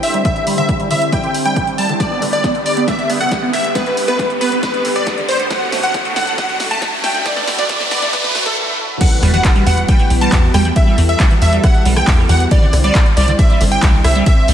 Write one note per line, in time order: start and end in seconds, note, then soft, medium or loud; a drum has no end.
0.00 8.97 D3 medium
0.00 5.47 G3 medium
0.00 1.97 C4 medium
0.00 1.97 E4 medium
0.00 1.97 C5 medium
0.00 0.18 E5 medium
0.00 open hi-hat loud
0.00 riser medium
0.14 0.23 G3 medium
0.14 closed hi-hat soft
0.25 0.29 D3 medium
0.25 0.47 E5 loud
0.25 kick loud
0.25 closed hi-hat medium
0.36 closed hi-hat soft
0.47 0.56 G3 medium
0.47 open hi-hat loud
0.58 0.61 D3 medium
0.58 0.80 E5 medium
0.58 0.80 E5 loud
0.58 closed hi-hat soft
0.69 kick loud
0.69 closed hi-hat medium
0.80 0.89 G3 medium
0.80 closed hi-hat soft
0.91 0.94 D3 medium
0.91 1.05 E5 medium
0.91 open hi-hat loud
1.02 closed hi-hat soft
1.12 1.22 G3 medium
1.12 1.35 G5 medium
1.12 1.35 G5 loud
1.12 kick loud
1.12 closed hi-hat medium
1.24 1.27 D3 medium
1.24 closed hi-hat soft
1.34 open hi-hat loud
1.45 1.54 G3 medium
1.45 1.68 G5 medium
1.45 1.68 G5 loud
1.45 closed hi-hat soft
1.56 1.60 D3 medium
1.56 kick loud
1.56 closed hi-hat medium
1.67 closed hi-hat soft
1.78 1.87 G3 medium
1.78 1.93 A5 medium
1.78 open hi-hat loud
1.89 1.93 D3 medium
1.89 closed hi-hat soft
2.00 5.47 B3 medium
2.00 5.47 G4 medium
2.00 5.47 B4 medium
2.00 2.22 D5 loud
2.00 kick loud
2.00 snare soft
2.00 closed hi-hat medium
2.11 2.20 B3 medium
2.22 2.26 D3 medium
2.22 open hi-hat loud
2.33 2.55 D5 medium
2.33 2.55 D5 loud
2.33 closed hi-hat medium
2.44 2.53 B3 medium
2.44 kick loud
2.44 snare soft
2.44 closed hi-hat medium
2.55 2.58 D3 medium
2.55 closed hi-hat soft
2.66 2.81 D5 medium
2.66 open hi-hat loud
2.77 2.86 B3 medium
2.77 closed hi-hat medium
2.88 2.91 D3 medium
2.88 3.10 E5 medium
2.88 3.10 E5 loud
2.88 kick loud
2.88 snare medium
2.88 closed hi-hat medium
2.99 closed hi-hat soft
3.10 3.19 B3 medium
3.10 open hi-hat loud
3.21 3.24 D3 medium
3.21 3.43 F#5 loud
3.21 closed hi-hat soft
3.32 kick loud
3.32 snare medium
3.32 closed hi-hat medium
3.43 3.51 B3 medium
3.53 3.57 D3 medium
3.53 3.68 E5 medium
3.53 3.68 E5 loud
3.53 open hi-hat loud
3.64 closed hi-hat medium
3.75 3.84 B3 medium
3.75 3.97 B4 loud
3.75 3.98 B4 loud
3.75 kick loud
3.75 snare medium
3.75 closed hi-hat medium
3.86 3.90 D3 medium
3.86 closed hi-hat soft
3.97 open hi-hat loud
4.08 4.17 B3 medium
4.08 4.30 B4 medium
4.08 4.30 B4 loud
4.08 closed hi-hat medium
4.19 4.23 D3 medium
4.19 kick loud
4.19 snare medium
4.19 closed hi-hat medium
4.30 closed hi-hat soft
4.41 4.50 B3 medium
4.41 4.56 B4 medium
4.41 open hi-hat loud
4.52 4.56 D3 medium
4.52 closed hi-hat medium
4.63 4.85 B4 loud
4.63 kick loud
4.63 snare medium
4.63 closed hi-hat medium
4.74 4.83 B3 medium
4.74 closed hi-hat soft
4.85 4.88 D3 medium
4.85 open hi-hat loud
4.96 5.18 D5 loud
4.96 closed hi-hat medium
5.07 5.16 B3 medium
5.07 kick loud
5.07 snare medium
5.07 closed hi-hat medium
5.18 5.21 D3 medium
5.18 closed hi-hat soft
5.29 5.43 C5 medium
5.29 open hi-hat loud
5.40 5.49 B3 medium
5.40 closed hi-hat medium
5.50 5.54 D3 medium
5.50 8.97 F#3 medium
5.50 8.97 A3 medium
5.50 8.97 F#4 medium
5.50 7.24 A4 medium
5.50 5.73 F#5 loud
5.50 kick loud
5.50 snare medium
5.50 closed hi-hat medium
5.72 5.81 A3 medium
5.72 snare medium
5.72 open hi-hat loud
5.83 5.87 D3 medium
5.83 6.06 F#5 medium
5.83 6.06 F#5 loud
5.83 closed hi-hat medium
5.94 kick loud
5.94 snare medium
5.94 closed hi-hat medium
6.05 6.14 A3 medium
6.05 closed hi-hat soft
6.16 6.20 D3 medium
6.16 6.31 F#5 medium
6.16 snare medium
6.16 open hi-hat loud
6.27 closed hi-hat medium
6.38 6.47 A3 medium
6.38 6.60 F#5 medium
6.38 6.60 F#5 loud
6.38 kick loud
6.38 snare medium
6.38 closed hi-hat medium
6.49 6.53 D3 medium
6.49 closed hi-hat soft
6.60 snare medium
6.60 open hi-hat loud
6.71 6.80 A3 medium
6.71 6.93 A5 loud
6.71 closed hi-hat medium
6.82 6.85 D3 medium
6.82 kick loud
6.82 snare medium
6.82 closed hi-hat medium
7.04 7.13 A3 medium
7.04 7.19 G5 medium
7.04 snare medium
7.04 open hi-hat loud
7.15 7.18 D3 medium
7.15 closed hi-hat medium
7.26 8.99 B4 medium
7.26 7.48 D5 loud
7.26 kick loud
7.26 snare loud
7.26 closed hi-hat medium
7.37 7.46 A3 medium
7.37 snare medium
7.48 7.51 D3 medium
7.48 snare loud
7.48 open hi-hat loud
7.58 7.81 D5 loud
7.58 7.81 D5 medium
7.58 snare medium
7.58 closed hi-hat medium
7.69 7.78 A3 medium
7.69 kick loud
7.69 snare medium
7.69 closed hi-hat medium
7.80 7.84 D3 medium
7.80 snare medium
7.80 closed hi-hat soft
7.91 8.06 D5 medium
7.91 snare loud
7.91 open hi-hat loud
8.02 8.11 A3 medium
8.02 snare medium
8.02 closed hi-hat medium
8.13 8.17 D3 medium
8.13 8.35 B4 medium
8.13 8.35 B4 loud
8.13 kick loud
8.13 snare loud
8.13 closed hi-hat medium
8.13 swell medium
8.24 snare medium
8.24 closed hi-hat soft
8.35 8.44 A3 medium
8.35 snare loud
8.35 open hi-hat loud
8.46 8.50 D3 medium
8.46 8.57 A4 loud
8.46 snare medium
8.46 closed hi-hat medium
9.01 12.48 E3 medium
9.01 9.04 E3 medium
9.01 14.54 G3 medium
9.01 12.48 B3 medium
9.01 12.48 F#4 medium
9.01 10.74 B4 medium
9.01 9.23 F#5 loud
9.01 kick loud
9.01 closed hi-hat medium
9.01 crash loud
9.01 ride medium
9.01 impact medium
9.23 9.40 E2 medium
9.23 9.32 G3 medium
9.23 cross-stick medium
9.23 open hi-hat loud
9.34 9.37 E3 medium
9.34 9.56 F#5 loud
9.34 9.56 F#5 medium
9.34 closed hi-hat medium
9.45 kick loud
9.45 clap loud
9.45 closed hi-hat medium
9.45 ride medium
9.56 9.65 G3 medium
9.56 closed hi-hat soft
9.66 9.84 E2 medium
9.66 9.70 E3 medium
9.66 9.81 F#5 medium
9.66 open hi-hat loud
9.78 closed hi-hat medium
9.88 9.97 G3 medium
9.88 10.11 G5 loud
9.88 kick loud
9.88 closed hi-hat medium
9.88 ride medium
9.99 10.03 E3 medium
9.99 closed hi-hat soft
10.10 10.28 B1 medium
10.10 open hi-hat loud
10.21 10.30 G3 medium
10.21 10.43 A5 loud
10.21 10.44 A5 loud
10.21 closed hi-hat medium
10.32 10.50 E2 medium
10.32 10.36 E3 medium
10.32 kick loud
10.32 clap loud
10.32 closed hi-hat medium
10.32 ride medium
10.54 10.72 E2 medium
10.54 10.63 G3 medium
10.54 10.69 G5 medium
10.54 10.69 G5 loud
10.54 cross-stick medium
10.54 open hi-hat loud
10.65 10.69 E3 medium
10.65 closed hi-hat medium
10.76 12.50 A4 medium
10.76 10.98 E5 loud
10.76 kick loud
10.76 closed hi-hat medium
10.76 ride medium
10.87 10.96 G3 medium
10.98 11.15 E2 loud
10.98 11.02 E3 medium
10.98 open hi-hat loud
11.09 11.31 E5 loud
11.09 11.31 E5 medium
11.09 closed hi-hat medium
11.20 11.29 G3 medium
11.20 kick loud
11.20 clap loud
11.20 closed hi-hat medium
11.20 ride medium
11.31 11.34 E3 medium
11.31 closed hi-hat soft
11.42 11.59 E2 medium
11.42 11.57 E5 medium
11.42 open hi-hat loud
11.53 11.62 G3 medium
11.53 closed hi-hat medium
11.64 11.67 E3 medium
11.64 11.86 F#5 loud
11.64 11.86 F#5 medium
11.64 kick loud
11.64 cross-stick medium
11.64 closed hi-hat medium
11.64 ride medium
11.75 closed hi-hat soft
11.86 12.03 B1 medium
11.86 11.94 G3 medium
11.86 open hi-hat loud
11.96 12.00 E3 medium
11.96 12.19 G5 loud
11.96 12.19 G5 medium
11.96 cross-stick medium
11.96 closed hi-hat medium
12.07 12.25 E2 medium
12.07 kick loud
12.07 clap loud
12.07 open hi-hat medium
12.07 ride medium
12.18 12.27 G3 medium
12.18 cross-stick medium
12.29 12.47 E2 loud
12.29 12.33 E3 medium
12.29 12.44 F#5 medium
12.29 open hi-hat loud
12.40 closed hi-hat medium
12.51 14.54 D3 medium
12.51 12.60 G3 medium
12.51 14.54 C4 medium
12.51 14.54 E4 medium
12.51 14.54 C5 medium
12.51 12.73 D5 loud
12.51 kick loud
12.51 closed hi-hat medium
12.51 ride medium
12.62 12.66 D3 medium
12.73 12.90 C2 loud
12.73 cross-stick medium
12.73 open hi-hat loud
12.84 12.93 G3 medium
12.84 13.06 D5 loud
12.84 closed hi-hat medium
12.95 12.99 D3 medium
12.95 kick loud
12.95 clap loud
12.95 closed hi-hat medium
12.95 ride medium
13.06 closed hi-hat soft
13.17 13.34 C2 medium
13.17 13.26 G3 medium
13.17 13.32 D5 medium
13.17 open hi-hat loud
13.28 13.31 D3 medium
13.28 closed hi-hat medium
13.39 13.61 E5 loud
13.39 kick loud
13.39 closed hi-hat medium
13.39 ride medium
13.50 13.59 G3 medium
13.50 closed hi-hat soft
13.61 13.78 G1 medium
13.61 13.64 D3 medium
13.61 open hi-hat loud
13.72 13.94 G5 loud
13.72 13.94 G5 medium
13.72 closed hi-hat medium
13.83 14.00 C2 medium
13.83 13.92 G3 medium
13.83 kick loud
13.83 clap loud
13.83 closed hi-hat medium
13.83 ride medium
13.94 13.97 D3 medium
14.04 14.22 C2 medium
14.04 14.19 E5 medium
14.04 cross-stick medium
14.04 open hi-hat loud
14.15 14.24 G3 medium
14.15 closed hi-hat medium
14.26 14.30 D3 medium
14.26 14.49 E5 loud
14.26 kick loud
14.26 closed hi-hat medium
14.26 ride medium
14.48 14.54 C2 medium
14.48 14.54 G3 medium
14.48 open hi-hat loud